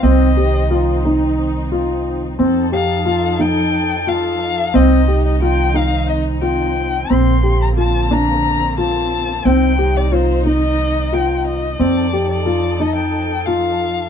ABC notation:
X:1
M:7/8
L:1/16
Q:1/4=89
K:Cdor
V:1 name="Violin"
e6 z8 | z2 f4 g4 f4 | e3 e g2 f2 e2 g4 | c'3 b a2 b4 a4 |
g3 d c2 e4 g2 e2 | d3 d3 e g3 f4 |]
V:2 name="Grand piano"
C2 G2 F2 E4 F4 | C2 G2 F2 E4 F4 | C2 G2 F2 E4 F4 | C2 G2 F2 D4 F4 |
C2 G2 F2 E4 F4 | C2 G2 F2 E4 F4 |]
V:3 name="String section"
[E,CE]12- [E,CE]2 | [F,EA]12- [F,EA]2 | [E,CE]12- [E,CE]2 | [D,B,]12- [D,B,]2 |
[E,E]12- [E,E]2 | [F,EA]12- [F,EA]2 |]
V:4 name="Upright bass" clef=bass
C,,12- C,,2 | F,,12- F,,2 | C,,12- C,,2 | B,,,12- B,,,2 |
C,,12- C,,2 | F,,12- F,,2 |]